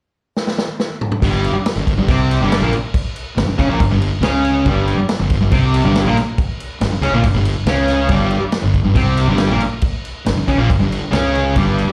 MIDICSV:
0, 0, Header, 1, 6, 480
1, 0, Start_track
1, 0, Key_signature, -2, "minor"
1, 0, Tempo, 430725
1, 1363, Time_signature, 4, 2, 24, 8
1, 13284, End_track
2, 0, Start_track
2, 0, Title_t, "Distorted electric guitar"
2, 0, Program_c, 0, 30
2, 1361, Note_on_c, 0, 43, 97
2, 1374, Note_on_c, 0, 55, 110
2, 1704, Note_off_c, 0, 43, 0
2, 1721, Note_off_c, 0, 55, 0
2, 1968, Note_on_c, 0, 43, 81
2, 2157, Note_off_c, 0, 43, 0
2, 2208, Note_on_c, 0, 43, 79
2, 2319, Note_on_c, 0, 48, 92
2, 2325, Note_off_c, 0, 43, 0
2, 2332, Note_on_c, 0, 60, 92
2, 2674, Note_off_c, 0, 48, 0
2, 2680, Note_off_c, 0, 60, 0
2, 2684, Note_on_c, 0, 43, 87
2, 2696, Note_on_c, 0, 55, 91
2, 2916, Note_off_c, 0, 43, 0
2, 2918, Note_on_c, 0, 46, 91
2, 2922, Note_off_c, 0, 55, 0
2, 2925, Note_on_c, 0, 58, 114
2, 3033, Note_off_c, 0, 46, 0
2, 3037, Note_off_c, 0, 58, 0
2, 3759, Note_on_c, 0, 43, 62
2, 3862, Note_off_c, 0, 43, 0
2, 3989, Note_on_c, 0, 49, 99
2, 4001, Note_on_c, 0, 61, 107
2, 4104, Note_off_c, 0, 49, 0
2, 4109, Note_on_c, 0, 46, 90
2, 4114, Note_off_c, 0, 61, 0
2, 4122, Note_on_c, 0, 58, 94
2, 4227, Note_on_c, 0, 43, 72
2, 4228, Note_off_c, 0, 46, 0
2, 4234, Note_off_c, 0, 58, 0
2, 4341, Note_off_c, 0, 43, 0
2, 4355, Note_on_c, 0, 43, 74
2, 4549, Note_off_c, 0, 43, 0
2, 4708, Note_on_c, 0, 49, 94
2, 4721, Note_on_c, 0, 61, 115
2, 5186, Note_off_c, 0, 49, 0
2, 5190, Note_on_c, 0, 43, 107
2, 5192, Note_off_c, 0, 61, 0
2, 5204, Note_on_c, 0, 55, 114
2, 5540, Note_off_c, 0, 43, 0
2, 5553, Note_off_c, 0, 55, 0
2, 5789, Note_on_c, 0, 43, 85
2, 5984, Note_off_c, 0, 43, 0
2, 6026, Note_on_c, 0, 43, 76
2, 6141, Note_on_c, 0, 48, 99
2, 6151, Note_off_c, 0, 43, 0
2, 6157, Note_on_c, 0, 60, 107
2, 6500, Note_off_c, 0, 48, 0
2, 6501, Note_on_c, 0, 43, 79
2, 6509, Note_off_c, 0, 60, 0
2, 6514, Note_on_c, 0, 55, 103
2, 6740, Note_off_c, 0, 43, 0
2, 6740, Note_on_c, 0, 46, 104
2, 6747, Note_off_c, 0, 55, 0
2, 6755, Note_on_c, 0, 58, 102
2, 6860, Note_off_c, 0, 46, 0
2, 6868, Note_off_c, 0, 58, 0
2, 7596, Note_on_c, 0, 43, 68
2, 7706, Note_off_c, 0, 43, 0
2, 7830, Note_on_c, 0, 49, 100
2, 7840, Note_on_c, 0, 61, 103
2, 7943, Note_off_c, 0, 49, 0
2, 7948, Note_off_c, 0, 61, 0
2, 7958, Note_on_c, 0, 46, 85
2, 7966, Note_on_c, 0, 58, 103
2, 8067, Note_off_c, 0, 46, 0
2, 8071, Note_off_c, 0, 58, 0
2, 8073, Note_on_c, 0, 43, 71
2, 8176, Note_off_c, 0, 43, 0
2, 8190, Note_on_c, 0, 43, 75
2, 8382, Note_off_c, 0, 43, 0
2, 8551, Note_on_c, 0, 49, 90
2, 8565, Note_on_c, 0, 61, 107
2, 9011, Note_on_c, 0, 43, 105
2, 9023, Note_off_c, 0, 49, 0
2, 9028, Note_on_c, 0, 55, 110
2, 9030, Note_off_c, 0, 61, 0
2, 9363, Note_off_c, 0, 43, 0
2, 9381, Note_off_c, 0, 55, 0
2, 9613, Note_on_c, 0, 43, 80
2, 9814, Note_off_c, 0, 43, 0
2, 9857, Note_on_c, 0, 43, 77
2, 9969, Note_on_c, 0, 48, 107
2, 9981, Note_on_c, 0, 60, 93
2, 9983, Note_off_c, 0, 43, 0
2, 10332, Note_off_c, 0, 48, 0
2, 10338, Note_off_c, 0, 60, 0
2, 10347, Note_on_c, 0, 43, 78
2, 10359, Note_on_c, 0, 55, 91
2, 10581, Note_off_c, 0, 43, 0
2, 10588, Note_off_c, 0, 55, 0
2, 10588, Note_on_c, 0, 46, 97
2, 10594, Note_on_c, 0, 58, 98
2, 10702, Note_off_c, 0, 46, 0
2, 10705, Note_off_c, 0, 58, 0
2, 11437, Note_on_c, 0, 43, 63
2, 11547, Note_off_c, 0, 43, 0
2, 11676, Note_on_c, 0, 49, 102
2, 11688, Note_on_c, 0, 61, 109
2, 11787, Note_off_c, 0, 49, 0
2, 11791, Note_on_c, 0, 46, 84
2, 11793, Note_off_c, 0, 61, 0
2, 11803, Note_on_c, 0, 58, 87
2, 11905, Note_off_c, 0, 46, 0
2, 11911, Note_off_c, 0, 58, 0
2, 11915, Note_on_c, 0, 43, 74
2, 12017, Note_off_c, 0, 43, 0
2, 12031, Note_on_c, 0, 43, 85
2, 12225, Note_off_c, 0, 43, 0
2, 12378, Note_on_c, 0, 49, 91
2, 12398, Note_on_c, 0, 61, 107
2, 12862, Note_off_c, 0, 49, 0
2, 12872, Note_off_c, 0, 61, 0
2, 12874, Note_on_c, 0, 43, 106
2, 12886, Note_on_c, 0, 55, 120
2, 13231, Note_off_c, 0, 43, 0
2, 13237, Note_off_c, 0, 55, 0
2, 13284, End_track
3, 0, Start_track
3, 0, Title_t, "Fingered electric bass"
3, 0, Program_c, 1, 33
3, 1360, Note_on_c, 1, 31, 93
3, 1696, Note_off_c, 1, 31, 0
3, 1955, Note_on_c, 1, 31, 70
3, 2182, Note_off_c, 1, 31, 0
3, 2197, Note_on_c, 1, 31, 74
3, 2311, Note_off_c, 1, 31, 0
3, 2322, Note_on_c, 1, 36, 84
3, 2657, Note_off_c, 1, 36, 0
3, 2684, Note_on_c, 1, 31, 96
3, 2906, Note_off_c, 1, 31, 0
3, 2919, Note_on_c, 1, 34, 101
3, 3032, Note_off_c, 1, 34, 0
3, 3756, Note_on_c, 1, 31, 84
3, 3864, Note_off_c, 1, 31, 0
3, 3996, Note_on_c, 1, 37, 104
3, 4100, Note_off_c, 1, 37, 0
3, 4107, Note_on_c, 1, 34, 95
3, 4225, Note_off_c, 1, 34, 0
3, 4240, Note_on_c, 1, 31, 70
3, 4327, Note_off_c, 1, 31, 0
3, 4333, Note_on_c, 1, 31, 85
3, 4569, Note_off_c, 1, 31, 0
3, 4689, Note_on_c, 1, 37, 104
3, 5149, Note_off_c, 1, 37, 0
3, 5192, Note_on_c, 1, 31, 96
3, 5529, Note_off_c, 1, 31, 0
3, 5794, Note_on_c, 1, 31, 83
3, 6018, Note_off_c, 1, 31, 0
3, 6036, Note_on_c, 1, 31, 77
3, 6142, Note_off_c, 1, 31, 0
3, 6148, Note_on_c, 1, 36, 92
3, 6486, Note_off_c, 1, 36, 0
3, 6512, Note_on_c, 1, 31, 92
3, 6736, Note_off_c, 1, 31, 0
3, 6743, Note_on_c, 1, 34, 100
3, 6850, Note_off_c, 1, 34, 0
3, 7590, Note_on_c, 1, 31, 83
3, 7685, Note_off_c, 1, 31, 0
3, 7814, Note_on_c, 1, 37, 93
3, 7925, Note_off_c, 1, 37, 0
3, 7932, Note_on_c, 1, 34, 87
3, 8052, Note_off_c, 1, 34, 0
3, 8070, Note_on_c, 1, 31, 74
3, 8170, Note_off_c, 1, 31, 0
3, 8177, Note_on_c, 1, 31, 84
3, 8406, Note_off_c, 1, 31, 0
3, 8534, Note_on_c, 1, 37, 100
3, 8988, Note_off_c, 1, 37, 0
3, 9018, Note_on_c, 1, 31, 100
3, 9358, Note_off_c, 1, 31, 0
3, 9624, Note_on_c, 1, 31, 80
3, 9846, Note_off_c, 1, 31, 0
3, 9853, Note_on_c, 1, 31, 71
3, 9972, Note_off_c, 1, 31, 0
3, 9981, Note_on_c, 1, 36, 89
3, 10320, Note_off_c, 1, 36, 0
3, 10338, Note_on_c, 1, 31, 94
3, 10567, Note_off_c, 1, 31, 0
3, 10586, Note_on_c, 1, 34, 100
3, 10700, Note_off_c, 1, 34, 0
3, 11446, Note_on_c, 1, 31, 86
3, 11551, Note_off_c, 1, 31, 0
3, 11685, Note_on_c, 1, 37, 101
3, 11788, Note_off_c, 1, 37, 0
3, 11795, Note_on_c, 1, 34, 98
3, 11906, Note_off_c, 1, 34, 0
3, 11924, Note_on_c, 1, 31, 79
3, 12023, Note_off_c, 1, 31, 0
3, 12030, Note_on_c, 1, 31, 80
3, 12256, Note_off_c, 1, 31, 0
3, 12395, Note_on_c, 1, 37, 96
3, 12844, Note_off_c, 1, 37, 0
3, 12881, Note_on_c, 1, 31, 98
3, 13216, Note_off_c, 1, 31, 0
3, 13284, End_track
4, 0, Start_track
4, 0, Title_t, "Muted distorted electric guitar strokes"
4, 1717, Note_on_c, 9, 29, 58
4, 1829, Note_off_c, 9, 29, 0
4, 3043, Note_on_c, 9, 29, 61
4, 3155, Note_off_c, 9, 29, 0
4, 3876, Note_on_c, 9, 29, 63
4, 3987, Note_off_c, 9, 29, 0
4, 5553, Note_on_c, 9, 29, 61
4, 5665, Note_off_c, 9, 29, 0
4, 6868, Note_on_c, 9, 29, 60
4, 6979, Note_off_c, 9, 29, 0
4, 7719, Note_on_c, 9, 29, 66
4, 7831, Note_off_c, 9, 29, 0
4, 9376, Note_on_c, 9, 29, 61
4, 9488, Note_off_c, 9, 29, 0
4, 10715, Note_on_c, 9, 29, 64
4, 10827, Note_off_c, 9, 29, 0
4, 11561, Note_on_c, 9, 29, 65
4, 11672, Note_off_c, 9, 29, 0
4, 13243, Note_on_c, 9, 29, 55
4, 13284, Note_off_c, 9, 29, 0
4, 13284, End_track
5, 0, Start_track
5, 0, Title_t, "Muted fingered electric bass strokes"
5, 1731, Note_on_c, 9, 29, 43
5, 1842, Note_off_c, 9, 29, 0
5, 3045, Note_on_c, 9, 29, 38
5, 3157, Note_off_c, 9, 29, 0
5, 3870, Note_on_c, 9, 29, 40
5, 3982, Note_off_c, 9, 29, 0
5, 5555, Note_on_c, 9, 29, 43
5, 5667, Note_off_c, 9, 29, 0
5, 6856, Note_on_c, 9, 29, 42
5, 6968, Note_off_c, 9, 29, 0
5, 7692, Note_on_c, 9, 29, 43
5, 7803, Note_off_c, 9, 29, 0
5, 9384, Note_on_c, 9, 29, 39
5, 9496, Note_off_c, 9, 29, 0
5, 10713, Note_on_c, 9, 29, 40
5, 10824, Note_off_c, 9, 29, 0
5, 11560, Note_on_c, 9, 29, 42
5, 11672, Note_off_c, 9, 29, 0
5, 13243, Note_on_c, 9, 29, 46
5, 13284, Note_off_c, 9, 29, 0
5, 13284, End_track
6, 0, Start_track
6, 0, Title_t, "Drums"
6, 408, Note_on_c, 9, 38, 67
6, 519, Note_off_c, 9, 38, 0
6, 528, Note_on_c, 9, 38, 71
6, 639, Note_off_c, 9, 38, 0
6, 651, Note_on_c, 9, 38, 97
6, 763, Note_off_c, 9, 38, 0
6, 888, Note_on_c, 9, 38, 89
6, 999, Note_off_c, 9, 38, 0
6, 1128, Note_on_c, 9, 45, 103
6, 1240, Note_off_c, 9, 45, 0
6, 1244, Note_on_c, 9, 45, 119
6, 1355, Note_off_c, 9, 45, 0
6, 1364, Note_on_c, 9, 36, 110
6, 1367, Note_on_c, 9, 49, 88
6, 1475, Note_off_c, 9, 36, 0
6, 1478, Note_off_c, 9, 49, 0
6, 1607, Note_on_c, 9, 49, 65
6, 1718, Note_off_c, 9, 49, 0
6, 1846, Note_on_c, 9, 49, 90
6, 1851, Note_on_c, 9, 38, 111
6, 1958, Note_off_c, 9, 49, 0
6, 1962, Note_off_c, 9, 38, 0
6, 2086, Note_on_c, 9, 36, 86
6, 2092, Note_on_c, 9, 49, 70
6, 2197, Note_off_c, 9, 36, 0
6, 2203, Note_off_c, 9, 49, 0
6, 2321, Note_on_c, 9, 49, 90
6, 2323, Note_on_c, 9, 36, 109
6, 2433, Note_off_c, 9, 49, 0
6, 2434, Note_off_c, 9, 36, 0
6, 2575, Note_on_c, 9, 49, 77
6, 2686, Note_off_c, 9, 49, 0
6, 2807, Note_on_c, 9, 49, 85
6, 2811, Note_on_c, 9, 38, 122
6, 2918, Note_off_c, 9, 49, 0
6, 2923, Note_off_c, 9, 38, 0
6, 3038, Note_on_c, 9, 49, 63
6, 3150, Note_off_c, 9, 49, 0
6, 3275, Note_on_c, 9, 49, 85
6, 3279, Note_on_c, 9, 36, 114
6, 3387, Note_off_c, 9, 49, 0
6, 3390, Note_off_c, 9, 36, 0
6, 3519, Note_on_c, 9, 49, 64
6, 3630, Note_off_c, 9, 49, 0
6, 3763, Note_on_c, 9, 49, 82
6, 3767, Note_on_c, 9, 38, 122
6, 3874, Note_off_c, 9, 49, 0
6, 3879, Note_off_c, 9, 38, 0
6, 4001, Note_on_c, 9, 36, 89
6, 4005, Note_on_c, 9, 49, 67
6, 4112, Note_off_c, 9, 36, 0
6, 4117, Note_off_c, 9, 49, 0
6, 4234, Note_on_c, 9, 49, 86
6, 4237, Note_on_c, 9, 36, 124
6, 4346, Note_off_c, 9, 49, 0
6, 4348, Note_off_c, 9, 36, 0
6, 4474, Note_on_c, 9, 49, 71
6, 4586, Note_off_c, 9, 49, 0
6, 4711, Note_on_c, 9, 49, 78
6, 4715, Note_on_c, 9, 38, 111
6, 4822, Note_off_c, 9, 49, 0
6, 4827, Note_off_c, 9, 38, 0
6, 4953, Note_on_c, 9, 49, 62
6, 5065, Note_off_c, 9, 49, 0
6, 5188, Note_on_c, 9, 49, 74
6, 5193, Note_on_c, 9, 36, 108
6, 5300, Note_off_c, 9, 49, 0
6, 5305, Note_off_c, 9, 36, 0
6, 5433, Note_on_c, 9, 49, 56
6, 5545, Note_off_c, 9, 49, 0
6, 5669, Note_on_c, 9, 49, 89
6, 5674, Note_on_c, 9, 38, 127
6, 5781, Note_off_c, 9, 49, 0
6, 5785, Note_off_c, 9, 38, 0
6, 5904, Note_on_c, 9, 49, 76
6, 5911, Note_on_c, 9, 36, 90
6, 6016, Note_off_c, 9, 49, 0
6, 6022, Note_off_c, 9, 36, 0
6, 6146, Note_on_c, 9, 49, 84
6, 6152, Note_on_c, 9, 36, 116
6, 6257, Note_off_c, 9, 49, 0
6, 6264, Note_off_c, 9, 36, 0
6, 6395, Note_on_c, 9, 49, 79
6, 6507, Note_off_c, 9, 49, 0
6, 6636, Note_on_c, 9, 49, 86
6, 6640, Note_on_c, 9, 38, 117
6, 6747, Note_off_c, 9, 49, 0
6, 6752, Note_off_c, 9, 38, 0
6, 6878, Note_on_c, 9, 49, 58
6, 6882, Note_on_c, 9, 38, 31
6, 6989, Note_off_c, 9, 49, 0
6, 6994, Note_off_c, 9, 38, 0
6, 7114, Note_on_c, 9, 36, 121
6, 7114, Note_on_c, 9, 49, 76
6, 7225, Note_off_c, 9, 36, 0
6, 7226, Note_off_c, 9, 49, 0
6, 7357, Note_on_c, 9, 49, 71
6, 7468, Note_off_c, 9, 49, 0
6, 7590, Note_on_c, 9, 49, 91
6, 7594, Note_on_c, 9, 38, 114
6, 7701, Note_off_c, 9, 49, 0
6, 7706, Note_off_c, 9, 38, 0
6, 7834, Note_on_c, 9, 49, 69
6, 7945, Note_off_c, 9, 49, 0
6, 8065, Note_on_c, 9, 49, 91
6, 8066, Note_on_c, 9, 36, 112
6, 8176, Note_off_c, 9, 49, 0
6, 8177, Note_off_c, 9, 36, 0
6, 8304, Note_on_c, 9, 49, 74
6, 8416, Note_off_c, 9, 49, 0
6, 8541, Note_on_c, 9, 49, 84
6, 8546, Note_on_c, 9, 38, 114
6, 8653, Note_off_c, 9, 49, 0
6, 8657, Note_off_c, 9, 38, 0
6, 8781, Note_on_c, 9, 49, 60
6, 8785, Note_on_c, 9, 38, 32
6, 8892, Note_off_c, 9, 49, 0
6, 8897, Note_off_c, 9, 38, 0
6, 9011, Note_on_c, 9, 49, 81
6, 9019, Note_on_c, 9, 36, 121
6, 9123, Note_off_c, 9, 49, 0
6, 9130, Note_off_c, 9, 36, 0
6, 9256, Note_on_c, 9, 49, 65
6, 9367, Note_off_c, 9, 49, 0
6, 9495, Note_on_c, 9, 49, 89
6, 9500, Note_on_c, 9, 38, 114
6, 9607, Note_off_c, 9, 49, 0
6, 9611, Note_off_c, 9, 38, 0
6, 9741, Note_on_c, 9, 36, 82
6, 9742, Note_on_c, 9, 49, 61
6, 9852, Note_off_c, 9, 36, 0
6, 9854, Note_off_c, 9, 49, 0
6, 9978, Note_on_c, 9, 49, 86
6, 9980, Note_on_c, 9, 36, 118
6, 10090, Note_off_c, 9, 49, 0
6, 10092, Note_off_c, 9, 36, 0
6, 10222, Note_on_c, 9, 49, 79
6, 10333, Note_off_c, 9, 49, 0
6, 10452, Note_on_c, 9, 49, 86
6, 10457, Note_on_c, 9, 38, 111
6, 10564, Note_off_c, 9, 49, 0
6, 10568, Note_off_c, 9, 38, 0
6, 10703, Note_on_c, 9, 49, 69
6, 10814, Note_off_c, 9, 49, 0
6, 10938, Note_on_c, 9, 49, 84
6, 10948, Note_on_c, 9, 36, 107
6, 11049, Note_off_c, 9, 49, 0
6, 11059, Note_off_c, 9, 36, 0
6, 11196, Note_on_c, 9, 49, 63
6, 11308, Note_off_c, 9, 49, 0
6, 11437, Note_on_c, 9, 49, 92
6, 11441, Note_on_c, 9, 38, 118
6, 11548, Note_off_c, 9, 49, 0
6, 11552, Note_off_c, 9, 38, 0
6, 11680, Note_on_c, 9, 36, 88
6, 11683, Note_on_c, 9, 49, 70
6, 11791, Note_off_c, 9, 36, 0
6, 11795, Note_off_c, 9, 49, 0
6, 11925, Note_on_c, 9, 36, 114
6, 11933, Note_on_c, 9, 49, 82
6, 12036, Note_off_c, 9, 36, 0
6, 12044, Note_off_c, 9, 49, 0
6, 12171, Note_on_c, 9, 49, 76
6, 12282, Note_off_c, 9, 49, 0
6, 12403, Note_on_c, 9, 49, 82
6, 12407, Note_on_c, 9, 38, 109
6, 12514, Note_off_c, 9, 49, 0
6, 12519, Note_off_c, 9, 38, 0
6, 12651, Note_on_c, 9, 49, 55
6, 12763, Note_off_c, 9, 49, 0
6, 12879, Note_on_c, 9, 49, 82
6, 12884, Note_on_c, 9, 36, 107
6, 12990, Note_off_c, 9, 49, 0
6, 12996, Note_off_c, 9, 36, 0
6, 13133, Note_on_c, 9, 49, 61
6, 13245, Note_off_c, 9, 49, 0
6, 13284, End_track
0, 0, End_of_file